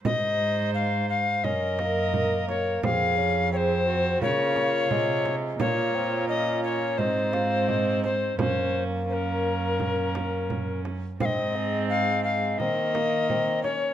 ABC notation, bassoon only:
X:1
M:4/4
L:1/8
Q:1/4=86
K:Abmix
V:1 name="Bassoon"
z4 D B,3 | C D C2 B,2 A,2 | B, C D2 E F E z | B,6- B, z |
C A,3 C B, C D |]